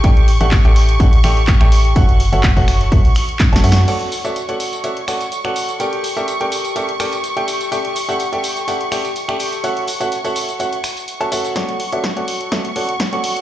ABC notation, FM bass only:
X:1
M:4/4
L:1/16
Q:"Swing 16ths" 1/4=125
K:D
V:1 name="FM bass" clef=bass
A,,,3 A,,,2 A,,,3 A,,,2 A,,,3 A,,,3 | F,,,3 F,,,2 F,,,3 F,,, z4 F,,, F,,2 | z16 | z16 |
z16 | z16 | z16 |]